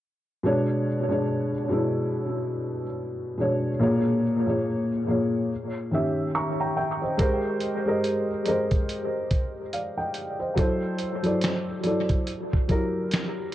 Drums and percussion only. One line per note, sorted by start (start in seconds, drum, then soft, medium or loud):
7.19 kick loud
7.19 closed hi-hat medium
7.60 closed hi-hat medium
8.04 closed hi-hat medium
8.45 closed hi-hat medium
8.71 kick medium
8.71 closed hi-hat soft
8.89 closed hi-hat medium
9.31 kick medium
9.31 closed hi-hat medium
9.73 closed hi-hat medium
10.14 closed hi-hat medium
10.58 kick loud
10.58 closed hi-hat medium
10.99 closed hi-hat medium
11.24 closed hi-hat soft
11.41 finger snap medium
11.41 snare medium
11.41 closed hi-hat medium
11.83 closed hi-hat medium
12.09 kick medium
12.09 closed hi-hat soft
12.27 closed hi-hat medium
12.54 kick medium
12.69 kick medium
12.69 closed hi-hat medium
13.11 finger snap medium
13.11 snare loud
13.11 closed hi-hat medium